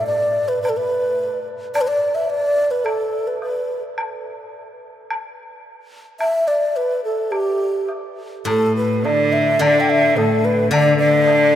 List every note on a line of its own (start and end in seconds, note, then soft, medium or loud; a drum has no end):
0.07 0.50 D5 medium
0.48 0.62 B4 medium
0.62 0.71 B4 medium
0.62 high woodblock soft
0.69 0.78 A4 medium
0.77 1.47 B4 medium
1.74 1.83 D5 loud
1.74 high woodblock medium
1.81 1.89 B4 medium
1.88 2.16 D5 medium
2.15 2.31 E5 medium
2.30 2.72 D5 medium
2.71 2.86 B4 medium
2.85 3.29 A4 medium
2.85 high woodblock medium
3.27 3.41 B4 medium
3.42 3.81 B4 medium
3.42 low woodblock soft
3.98 high woodblock medium
5.10 high woodblock medium
6.20 6.49 E5 loud
6.20 high woodblock medium
6.48 6.78 D5 medium
6.76 7.04 B4 medium
7.04 7.33 A4 medium
7.31 7.89 G4 medium
7.31 high woodblock medium
7.89 low woodblock soft
8.45 9.60 A2 medium
8.45 9.07 A2 medium
8.45 8.75 A4 medium
8.45 high woodblock medium
8.77 9.07 B4 medium
9.05 9.61 D3 medium
9.05 9.34 D5 medium
9.05 high woodblock soft
9.05 low woodblock soft
9.33 9.62 E5 medium
9.59 10.70 D3 medium
9.59 10.18 D3 medium
9.59 9.82 D5 loud
9.59 high woodblock medium
9.80 9.91 G5 medium
9.90 10.18 E5 medium
10.17 10.72 A2 medium
10.17 10.46 A4 medium
10.17 high woodblock soft
10.17 low woodblock soft
10.45 10.71 B4 medium
10.71 11.55 D3 medium
10.71 10.98 D3 medium
10.71 10.97 D5 loud
10.71 high woodblock medium
10.98 11.55 D3 medium
10.98 11.55 D5 loud
11.28 high woodblock soft
11.28 low woodblock soft